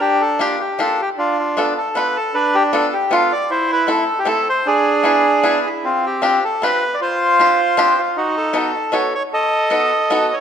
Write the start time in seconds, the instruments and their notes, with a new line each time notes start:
0.00 bandoneon D4 G4
0.21 bandoneon A4
0.39 five-string banjo A#3 D4 F4 G4, bandoneon G4
0.60 bandoneon G4
0.79 five-string banjo A#3 D4 F4 G4, bandoneon A4
1.01 bandoneon G4
1.18 bandoneon D4 F4
1.39 bandoneon F4
1.57 five-string banjo B3 D4 F4 A4, bandoneon A4
1.78 bandoneon A4
1.95 five-string banjo B3 D4 F4 A4, bandoneon B4
2.16 bandoneon A4
2.34 bandoneon D4 B4
2.55 bandoneon G4
2.73 five-string banjo B3 D4 F4 A4, bandoneon A4
2.93 bandoneon G4
3.11 five-string banjo B3 D4 F4 A4, bandoneon F4
3.32 bandoneon D5
3.50 bandoneon E4 C5
3.72 bandoneon B4
3.87 five-string banjo A3 C4 E4 A4, bandoneon A4
4.19 bandoneon G4
4.25 five-string banjo A3 C4 E4 A4, bandoneon A4
4.49 bandoneon C5
4.66 bandoneon D4 G#4
5.03 five-string banjo B3 D4 E4 G#4
5.43 five-string banjo B3 D4 E4 G#4
5.67 bandoneon E4
5.84 bandoneon C4 F4
6.06 bandoneon G4
6.22 five-string banjo C4 D4 F4 G4, bandoneon G4
6.44 bandoneon A4
6.62 five-string banjo C4 D4 F4 G4, bandoneon B4
6.94 bandoneon D5
7.01 bandoneon F4 C5
7.39 five-string banjo C4 D4 F4 G4
7.77 five-string banjo C4 D4 F4 G4
7.99 bandoneon F4
8.17 bandoneon D#4 F#4
8.37 bandoneon A4
8.53 five-string banjo B3 D#4 F#4 A4, bandoneon A4
8.92 five-string banjo B3 D#4 F#4 A4, bandoneon C#5
9.15 bandoneon C#5
9.33 bandoneon A4 D#5
9.70 five-string banjo B3 D#4 F#4 A4
10.10 five-string banjo B3 D#4 F#4 A4
10.33 bandoneon C#5